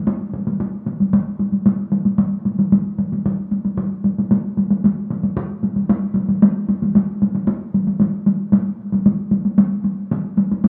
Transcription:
0.07 taiko high medium
0.33 taiko high medium
0.47 taiko high medium
0.60 taiko high medium
0.86 taiko high medium
1.00 taiko high soft
1.13 taiko high medium
1.40 taiko high soft
1.52 taiko high soft
1.66 taiko high medium
1.92 taiko high medium
2.05 taiko high soft
2.18 taiko high medium
2.45 taiko high soft
2.59 taiko high medium
2.72 taiko high medium
2.99 taiko high medium
3.12 taiko high soft
3.26 taiko high medium
3.52 taiko high soft
3.65 taiko high soft
3.78 taiko high medium
4.04 taiko high medium
4.18 taiko high medium
4.31 taiko high medium
4.57 taiko high medium
4.70 taiko high medium
4.84 taiko high medium
5.10 taiko high medium
5.23 taiko high medium
5.37 taiko high medium
5.63 taiko high medium
5.76 taiko high soft
5.90 taiko high medium
6.16 taiko high medium
6.29 taiko high medium
6.42 taiko high medium
6.68 taiko high medium
6.82 taiko high medium
6.95 taiko high medium
7.22 taiko high medium
7.35 taiko high medium
7.48 taiko high medium
7.74 taiko high soft
7.87 taiko high soft
8.00 taiko high medium
8.26 taiko high medium
8.52 taiko high medium
8.92 taiko high medium
9.06 taiko high medium
9.31 taiko high medium
9.45 taiko high soft
9.58 taiko high medium
9.84 taiko high soft
10.11 taiko high medium
10.38 taiko high medium
10.51 taiko high medium
10.64 taiko high medium

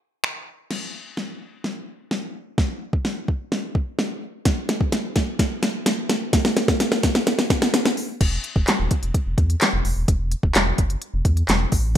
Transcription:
0.24 finger snap loud
0.71 snare medium
0.71 crash medium
1.17 snare medium
1.64 snare medium
2.11 snare medium
2.58 kick loud
2.58 snare medium
2.93 kick medium
3.05 snare medium
3.28 kick medium
3.52 snare medium
3.75 kick medium
3.99 snare medium
4.45 kick loud
4.45 snare medium
4.45 closed hi-hat medium
4.69 snare medium
4.69 closed hi-hat medium
4.81 kick loud
4.92 snare medium
4.92 closed hi-hat medium
5.16 kick medium
5.16 snare medium
5.16 closed hi-hat medium
5.39 kick medium
5.39 snare medium
5.39 closed hi-hat medium
5.63 snare medium
5.63 closed hi-hat medium
5.86 snare loud
5.86 closed hi-hat medium
6.09 snare loud
6.09 closed hi-hat medium
6.33 kick loud
6.33 snare loud
6.33 closed hi-hat medium
6.45 snare loud
6.57 snare loud
6.57 closed hi-hat medium
6.68 kick loud
6.68 snare loud
6.80 snare loud
6.80 closed hi-hat medium
6.92 snare loud
7.03 kick medium
7.03 snare loud
7.03 closed hi-hat medium
7.15 snare loud
7.27 snare loud
7.27 closed hi-hat medium
7.39 snare loud
7.50 kick loud
7.50 snare loud
7.50 closed hi-hat medium
7.62 snare loud
7.74 snare loud
7.74 closed hi-hat medium
7.85 snare loud
7.97 open hi-hat medium
8.21 8.38 E1 loud
8.21 kick loud
8.21 closed hi-hat loud
8.21 crash loud
8.44 closed hi-hat medium
8.56 8.65 E1 loud
8.56 kick loud
8.68 snare medium
8.68 clap loud
8.68 closed hi-hat medium
8.79 8.88 D#1 loud
8.91 kick medium
8.91 closed hi-hat medium
9.03 9.12 E1 loud
9.03 closed hi-hat medium
9.14 kick medium
9.14 closed hi-hat medium
9.26 9.35 E1 medium
9.38 9.55 E2 loud
9.38 kick medium
9.38 closed hi-hat medium
9.50 closed hi-hat medium
9.61 snare medium
9.61 clap loud
9.61 closed hi-hat medium
9.73 9.82 E1 loud
9.85 9.94 E1 medium
9.85 open hi-hat medium
9.97 10.05 D#1 medium
10.08 10.35 E1 loud
10.08 kick loud
10.08 closed hi-hat medium
10.32 closed hi-hat medium
10.43 10.52 D#1 medium
10.43 kick loud
10.55 10.73 E1 loud
10.55 snare medium
10.55 clap loud
10.55 closed hi-hat medium
10.78 10.96 F#1 medium
10.78 kick medium
10.78 closed hi-hat medium
10.90 closed hi-hat medium
11.02 closed hi-hat medium
11.14 11.22 E1 loud
11.25 11.43 E2 loud
11.25 kick loud
11.25 closed hi-hat medium
11.37 closed hi-hat medium
11.49 11.66 E1 medium
11.49 snare loud
11.49 clap loud
11.49 closed hi-hat loud
11.72 11.97 A1 medium
11.72 kick medium
11.72 open hi-hat medium

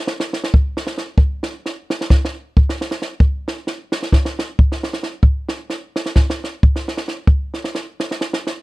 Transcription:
0.07 snare soft
0.20 snare soft
0.33 snare soft
0.44 snare soft
0.54 kick medium
0.77 snare soft
0.87 snare soft
0.98 snare soft
1.18 kick medium
1.43 snare soft
1.66 snare soft
1.90 snare soft
2.01 snare soft
2.10 kick medium
2.10 snare soft
2.25 snare soft
2.57 kick medium
2.69 snare soft
2.81 snare soft
2.91 snare soft
3.02 snare soft
3.20 kick medium
3.48 snare soft
3.67 snare soft
3.92 snare soft
4.03 snare soft
4.12 kick medium
4.12 snare soft
4.25 snare soft
4.39 snare soft
4.59 kick medium
4.72 snare soft
4.83 snare soft
4.93 snare soft
5.03 snare soft
5.23 kick medium
5.49 snare soft
5.70 snare soft
5.96 snare soft
6.06 snare soft
6.16 kick medium
6.16 snare soft
6.30 snare soft
6.44 snare soft
6.63 kick medium
6.76 snare soft
6.88 snare soft
6.97 snare soft
7.08 snare soft
7.27 kick medium
7.54 snare soft
7.64 snare soft
7.75 snare soft
8.00 snare soft
8.11 snare soft
8.21 snare soft
8.33 snare soft
8.47 snare soft

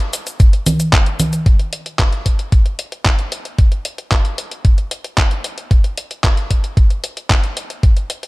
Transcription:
0.00 closed hi-hat soft
0.13 closed hi-hat medium
0.13 cabasa medium
0.27 closed hi-hat soft
0.27 cabasa soft
0.40 kick loud
0.40 closed hi-hat medium
0.40 cabasa soft
0.53 closed hi-hat soft
0.66 closed hi-hat loud
0.66 high conga medium
0.66 cabasa medium
0.80 closed hi-hat soft
0.80 cabasa soft
0.93 kick loud
0.93 clap loud
0.93 closed hi-hat medium
0.93 cabasa soft
1.06 closed hi-hat soft
1.20 closed hi-hat medium
1.20 high conga medium
1.20 cabasa medium
1.33 closed hi-hat soft
1.33 cabasa soft
1.46 kick loud
1.46 closed hi-hat medium
1.59 closed hi-hat soft
1.73 closed hi-hat medium
1.86 closed hi-hat soft
1.99 kick loud
1.99 clap loud
1.99 closed hi-hat medium
2.13 closed hi-hat soft
2.26 kick medium
2.26 closed hi-hat medium
2.39 closed hi-hat soft
2.52 kick loud
2.52 closed hi-hat medium
2.66 closed hi-hat soft
2.79 closed hi-hat medium
2.92 closed hi-hat soft
3.05 kick loud
3.05 clap loud
3.05 closed hi-hat medium
3.19 closed hi-hat soft
3.32 closed hi-hat medium
3.45 closed hi-hat soft
3.58 kick loud
3.58 closed hi-hat medium
3.72 closed hi-hat soft
3.85 closed hi-hat medium
3.98 closed hi-hat soft
4.12 kick loud
4.12 clap loud
4.12 closed hi-hat medium
4.25 closed hi-hat soft
4.38 closed hi-hat medium
4.51 closed hi-hat soft
4.65 kick loud
4.65 closed hi-hat medium
4.78 closed hi-hat soft
4.91 closed hi-hat medium
5.04 closed hi-hat soft
5.18 kick loud
5.18 clap loud
5.18 closed hi-hat medium
5.31 closed hi-hat soft
5.44 closed hi-hat medium
5.58 closed hi-hat soft
5.71 kick loud
5.71 closed hi-hat medium
5.84 closed hi-hat soft
5.97 closed hi-hat medium
6.11 closed hi-hat soft
6.24 kick loud
6.24 clap loud
6.24 closed hi-hat medium
6.37 closed hi-hat soft
6.51 kick medium
6.51 closed hi-hat medium
6.64 closed hi-hat soft
6.77 kick loud
6.77 closed hi-hat medium
6.90 closed hi-hat soft
7.04 closed hi-hat medium
7.17 closed hi-hat soft
7.30 kick loud
7.30 clap loud
7.30 closed hi-hat medium
7.44 closed hi-hat soft
7.57 closed hi-hat medium
7.70 closed hi-hat soft
7.83 kick loud
7.83 closed hi-hat medium
7.97 closed hi-hat soft
8.10 closed hi-hat medium
8.23 closed hi-hat soft

